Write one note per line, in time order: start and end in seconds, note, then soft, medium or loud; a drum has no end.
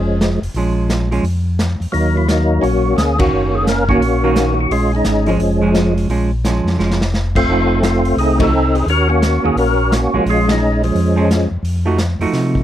0.00 0.38 F1 medium
0.00 0.39 F3 medium
0.00 0.40 G#3 medium
0.00 0.19 C#4 medium
0.21 snare medium
0.21 closed hi-hat medium
0.42 0.49 F1 soft
0.42 open hi-hat soft
0.54 1.21 A#1 medium
0.54 1.08 F3 medium
0.54 1.08 G#3 medium
0.54 1.09 C#4 medium
0.54 open hi-hat soft
0.90 snare medium
0.90 closed hi-hat medium
1.11 1.23 F3 medium
1.11 1.24 G#3 medium
1.11 1.24 C#4 medium
1.11 open hi-hat soft
1.23 1.76 F2 medium
1.23 open hi-hat soft
1.59 snare medium
1.59 closed hi-hat soft
1.80 1.87 F2 soft
1.80 open hi-hat soft
1.92 2.60 D#2 medium
1.92 2.27 F#3 medium
1.92 2.28 A#3 medium
1.92 2.16 D#4 medium
1.92 open hi-hat soft
2.17 2.28 E4 medium
2.28 2.94 F#3 medium
2.28 2.60 A#3 medium
2.28 2.64 D#4 medium
2.28 snare medium
2.28 closed hi-hat medium
2.61 2.95 A#1 medium
2.61 3.17 A#3 medium
2.61 3.18 C#4 medium
2.61 2.99 F#4 medium
2.61 open hi-hat soft
2.97 3.30 D2 medium
2.97 3.20 G#4 loud
2.97 snare medium
2.97 closed hi-hat medium
3.18 3.64 D#3 medium
3.18 3.84 A#3 medium
3.18 3.64 A#3 medium
3.18 3.85 C#4 medium
3.18 3.65 C#4 medium
3.18 3.55 F#4 loud
3.18 3.65 F#4 medium
3.18 kick medium
3.18 ride medium
3.32 3.98 F#1 medium
3.55 3.67 G#4 medium
3.67 3.88 A#4 loud
3.67 snare medium
3.67 closed hi-hat medium
3.89 4.01 D#3 medium
3.89 4.54 A#3 medium
3.89 4.01 A#3 medium
3.89 4.54 C#4 medium
3.89 4.01 C#4 medium
3.89 4.59 F#4 medium
3.89 4.01 F#4 medium
3.89 kick medium
4.01 4.67 A#1 medium
4.01 open hi-hat soft
4.24 4.69 D#3 medium
4.24 4.69 A#3 medium
4.24 4.69 C#4 medium
4.24 4.69 F#4 medium
4.36 snare medium
4.36 closed hi-hat soft
4.61 4.73 F#4 medium
4.70 5.03 A#1 medium
4.70 4.94 G#3 medium
4.70 5.28 C#4 medium
4.70 4.92 F4 medium
4.70 open hi-hat soft
4.95 5.29 G#3 medium
4.95 5.30 D#4 medium
5.04 5.37 G#1 medium
5.04 snare medium
5.04 closed hi-hat medium
5.26 5.39 F3 medium
5.26 5.94 F3 medium
5.26 5.40 G#3 medium
5.26 5.94 G#3 medium
5.26 5.40 C#4 medium
5.26 5.73 C#4 medium
5.26 open hi-hat soft
5.39 6.06 F1 medium
5.39 open hi-hat soft
5.62 6.07 F3 medium
5.62 6.07 G#3 medium
5.62 6.08 C#4 medium
5.74 snare medium
5.74 closed hi-hat soft
5.98 open hi-hat soft
6.08 6.61 A#1 medium
6.08 6.29 F3 medium
6.08 6.30 G#3 medium
6.08 6.30 C#4 medium
6.08 open hi-hat soft
6.45 6.78 F3 medium
6.45 6.78 G#3 medium
6.45 6.79 C#4 medium
6.45 snare medium
6.45 closed hi-hat medium
6.64 6.77 F2 medium
6.64 snare soft
6.78 7.44 F1 medium
6.78 6.99 F3 soft
6.78 6.99 G#3 medium
6.78 7.00 C#4 medium
6.78 snare soft
6.91 snare medium
7.01 snare medium
7.14 snare medium
7.35 7.84 A3 medium
7.35 7.83 C4 medium
7.35 7.80 F4 loud
7.35 kick medium
7.35 crash medium
7.47 8.14 F1 medium
7.47 8.01 F3 soft
7.47 8.01 A3 medium
7.47 8.01 D#4 medium
7.83 8.49 A3 medium
7.83 8.18 C4 medium
7.83 8.16 F4 medium
7.83 snare medium
7.83 closed hi-hat medium
8.05 open hi-hat soft
8.17 8.83 C2 medium
8.17 8.42 C4 medium
8.17 8.42 D#4 medium
8.17 8.38 G#4 medium
8.17 open hi-hat soft
8.39 8.51 F3 medium
8.39 8.51 A3 medium
8.39 8.86 C4 medium
8.39 8.52 D#4 medium
8.39 8.52 F#4 medium
8.39 8.76 A4 loud
8.39 kick medium
8.39 ride medium
8.43 8.86 D#4 medium
8.75 8.88 G#4 medium
8.75 open hi-hat soft
8.86 9.39 D#2 medium
8.86 9.08 C#4 medium
8.86 9.08 F#4 medium
8.86 9.09 A#4 medium
8.86 open hi-hat soft
9.09 9.75 A#3 medium
9.09 9.57 C#4 medium
9.09 9.45 F#4 loud
9.22 snare medium
9.22 closed hi-hat medium
9.44 9.51 D#2 soft
9.44 9.55 D#3 medium
9.44 9.55 A#3 medium
9.44 9.56 C#4 medium
9.44 9.56 F#4 medium
9.44 9.57 G#4 medium
9.56 10.08 A#1 medium
9.56 9.92 C#4 medium
9.56 9.91 F#4 medium
9.56 9.94 A#4 medium
9.56 open hi-hat soft
9.92 10.24 A#3 medium
9.92 10.24 C#4 medium
9.92 10.24 F#4 medium
9.92 snare medium
9.92 closed hi-hat medium
10.13 10.20 A#1 soft
10.13 10.58 F3 medium
10.13 10.59 G#3 medium
10.13 10.59 C#4 medium
10.25 10.92 A#1 medium
10.25 open hi-hat soft
10.30 10.49 G#3 medium
10.30 10.84 C#4 medium
10.30 10.50 F4 medium
10.49 10.83 G#3 medium
10.49 10.82 D#4 medium
10.49 snare medium
10.49 ride medium
10.83 11.49 F3 medium
10.83 11.49 G#3 medium
10.83 11.49 C#4 medium
10.83 open hi-hat soft
10.95 11.47 F2 medium
10.95 open hi-hat soft
11.16 11.28 F3 medium
11.16 11.29 G#3 medium
11.16 11.29 C#4 medium
11.31 snare medium
11.31 closed hi-hat medium
11.51 11.58 F2 soft
11.63 12.16 F2 medium
11.63 open hi-hat soft
11.85 11.97 F3 medium
11.85 11.98 A3 medium
11.85 11.98 D#4 medium
11.85 11.98 F#4 medium
11.98 snare medium
11.98 closed hi-hat medium
12.19 12.26 F2 soft
12.19 12.64 F3 medium
12.19 12.64 A3 medium
12.19 12.64 D#4 medium
12.19 12.64 F#4 medium
12.19 open hi-hat soft
12.33 12.64 C3 medium
12.33 snare soft
12.33 open hi-hat soft
12.55 kick medium